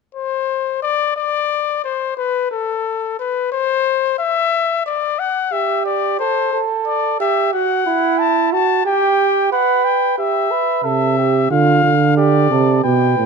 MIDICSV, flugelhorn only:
0, 0, Header, 1, 2, 480
1, 0, Start_track
1, 0, Tempo, 671892
1, 1559, Time_signature, 4, 2, 24, 8
1, 3953, Tempo, 665188
1, 9526, End_track
2, 0, Start_track
2, 0, Title_t, "Flugelhorn"
2, 0, Program_c, 0, 56
2, 3949, Note_on_c, 0, 67, 72
2, 4403, Note_off_c, 0, 67, 0
2, 4433, Note_on_c, 0, 69, 80
2, 4668, Note_off_c, 0, 69, 0
2, 4674, Note_on_c, 0, 69, 86
2, 5146, Note_off_c, 0, 69, 0
2, 5157, Note_on_c, 0, 67, 81
2, 5393, Note_on_c, 0, 66, 74
2, 5404, Note_off_c, 0, 67, 0
2, 5630, Note_off_c, 0, 66, 0
2, 5634, Note_on_c, 0, 64, 91
2, 6114, Note_on_c, 0, 66, 81
2, 6125, Note_off_c, 0, 64, 0
2, 6347, Note_off_c, 0, 66, 0
2, 6351, Note_on_c, 0, 67, 93
2, 6819, Note_off_c, 0, 67, 0
2, 6829, Note_on_c, 0, 71, 92
2, 7297, Note_off_c, 0, 71, 0
2, 7305, Note_on_c, 0, 67, 71
2, 7544, Note_on_c, 0, 71, 81
2, 7555, Note_off_c, 0, 67, 0
2, 7785, Note_on_c, 0, 69, 70
2, 7796, Note_off_c, 0, 71, 0
2, 8022, Note_off_c, 0, 69, 0
2, 8026, Note_on_c, 0, 67, 69
2, 8259, Note_off_c, 0, 67, 0
2, 8263, Note_on_c, 0, 65, 71
2, 8571, Note_off_c, 0, 65, 0
2, 8746, Note_on_c, 0, 67, 82
2, 8989, Note_on_c, 0, 69, 73
2, 9000, Note_off_c, 0, 67, 0
2, 9222, Note_off_c, 0, 69, 0
2, 9226, Note_on_c, 0, 71, 74
2, 9526, Note_off_c, 0, 71, 0
2, 9526, End_track
0, 0, End_of_file